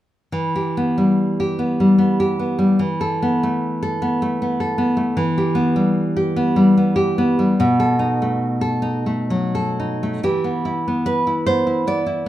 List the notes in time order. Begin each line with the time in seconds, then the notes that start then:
0.32 E3
0.56 G4
0.77 B3
0.98 G3
1.40 G4
1.59 B3
1.80 G3
1.98 B3
2.20 G4
2.39 B3
2.59 G3
2.79 E3
3.01 A4
3.22 B3
3.43 A3
3.83 A4
4.02 B3
4.22 A3
4.42 B3
4.60 A4
4.78 B3
4.97 A3
5.17 E3
5.38 G4
5.55 B3
5.76 G3
6.17 G4
6.36 B3
6.56 G3
6.77 B3
6.96 G4
7.18 B3
7.39 G3
7.60 B2
7.80 A4
7.99 D#4
8.22 A3
8.61 A4
8.82 D#4
9.06 A3
9.30 F#3
9.55 A4
9.80 D#4
10.03 A3
10.23 E3 G4
10.44 B3
10.65 E4
10.88 B3
11.06 B4
11.27 E4
11.46 B3 C5
11.67 E4
11.87 B3 D5
12.06 E4